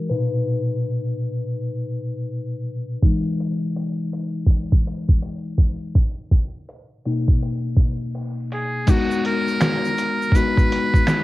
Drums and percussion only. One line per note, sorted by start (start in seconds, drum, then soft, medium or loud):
3.03 kick loud
3.03 closed hi-hat medium
3.40 closed hi-hat medium
3.76 closed hi-hat medium
4.13 closed hi-hat medium
4.47 kick medium
4.47 closed hi-hat medium
4.72 kick medium
4.87 closed hi-hat medium
5.09 kick medium
5.22 closed hi-hat medium
5.58 kick medium
5.58 closed hi-hat medium
5.95 kick loud
5.95 closed hi-hat medium
6.31 kick medium
6.31 closed hi-hat medium
6.69 closed hi-hat medium
7.05 closed hi-hat medium
7.28 kick medium
7.42 closed hi-hat medium
7.77 kick loud
7.77 closed hi-hat medium
8.15 closed hi-hat medium
8.52 closed hi-hat medium
8.87 kick loud
8.87 closed hi-hat medium
8.87 crash medium
8.87 shaker medium
9.11 shaker soft
9.25 closed hi-hat medium
9.48 shaker soft
9.61 finger snap loud
9.61 snare loud
9.61 closed hi-hat medium
9.61 shaker medium
9.85 shaker soft
9.98 closed hi-hat medium
9.98 shaker soft
10.22 shaker soft
10.32 kick medium
10.32 closed hi-hat medium
10.32 shaker medium
10.57 kick medium
10.57 shaker soft
10.72 closed hi-hat medium
10.94 kick medium
10.94 shaker soft
11.07 finger snap medium
11.07 snare loud
11.07 closed hi-hat medium
11.07 shaker medium